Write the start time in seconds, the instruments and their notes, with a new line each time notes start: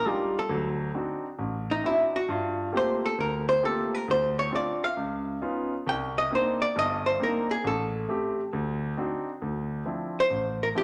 0.06 grand piano G3 D4 D#4 F4, hollow-body jazz guitar G4
0.39 hollow-body jazz guitar A4
0.49 grand piano D2 F#3
0.94 grand piano C4 D4 D#4 F#4
1.39 grand piano A1
1.71 hollow-body jazz guitar D#4
1.84 grand piano C4 D4 D#4 F#4, hollow-body jazz guitar E4
2.16 hollow-body jazz guitar F#4
2.28 grand piano G2, hollow-body jazz guitar F4
2.72 grand piano A3 A#3 C4 F4 G4
2.77 hollow-body jazz guitar C5
3.06 hollow-body jazz guitar A4
3.18 grand piano D2, hollow-body jazz guitar A#4
3.49 hollow-body jazz guitar C5
3.63 grand piano A3 A#3 C4 F4 G4, hollow-body jazz guitar A4
3.95 hollow-body jazz guitar A#4
4.08 grand piano D2, hollow-body jazz guitar C5
4.39 hollow-body jazz guitar C#5
4.51 grand piano C4 D4 F4
4.56 hollow-body jazz guitar D5
4.84 hollow-body jazz guitar F5
4.97 grand piano C#2
5.42 grand piano B3 C#4 D#4 F4
5.87 grand piano C2, hollow-body jazz guitar G5
6.18 hollow-body jazz guitar D#5
6.30 grand piano A#3 C4 D4 D#4
6.35 hollow-body jazz guitar C5
6.62 hollow-body jazz guitar D5
6.76 grand piano G1 G2, hollow-body jazz guitar D#5
7.06 hollow-body jazz guitar C5
7.20 grand piano A#3 C4 D4 D#4, hollow-body jazz guitar A#4
7.51 hollow-body jazz guitar G#4
7.64 grand piano A1, hollow-body jazz guitar A4
8.09 grand piano A3 C4 G4
8.53 grand piano D2
8.97 grand piano C4 D4 D#4 F#4
9.42 grand piano D2
9.85 grand piano F3 C4 D4 E4
10.20 hollow-body jazz guitar C5
10.31 grand piano A1
10.63 hollow-body jazz guitar A#4
10.75 grand piano F3 C4 D4 E4, hollow-body jazz guitar G4